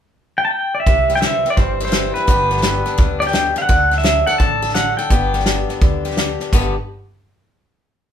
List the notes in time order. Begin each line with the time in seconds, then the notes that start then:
0.38 G5
0.45 A5
0.51 G5
0.75 D5
0.80 E5
0.86 C2 C3 C4, kick, snare
1.09 G3, snare
1.15 G5, snare
1.21 E3 E5, snare, hi-hat pedal
1.45 C4, snare
1.50 D5
1.57 G1 G2 C5, kick, snare
1.80 E4, snare
1.85 C5, snare
1.92 E3, snare, hi-hat pedal
2.14 C4 B4, snare
2.27 G1 G2 D3 B3 D4 G4, kick, snare
2.51 B3, snare
2.57 snare
2.62 D3, snare, hi-hat pedal
2.86 D4, snare
2.98 D2 G2, kick, snare
3.20 G4 D5, snare
3.27 G5, snare
3.33 B2, snare, hi-hat pedal
3.56 C3 F5, snare
3.62 F#5
3.69 D2 D3 A4, kick, snare
3.91 D4, snare
3.98 E5, snare
4.04 F#3, snare, hi-hat pedal
4.27 A4 F#5, snare
4.38 A1 A2 A5, kick, snare
4.62 A4, snare
4.69 snare
4.75 F#3 F#5, snare, hi-hat pedal
4.97 A4 G5, snare
5.10 G1 G2 D3 B3 D4 G4, kick, snare
5.33 B3, snare
5.39 snare
5.46 D3, snare, hi-hat pedal
5.69 D4, snare
5.82 D2 D3, kick, snare
6.04 G4, snare
6.11 snare
6.17 D3, snare, hi-hat pedal
6.40 D4, snare
6.53 G1 G2 D3 B3 D4 G4, kick, crash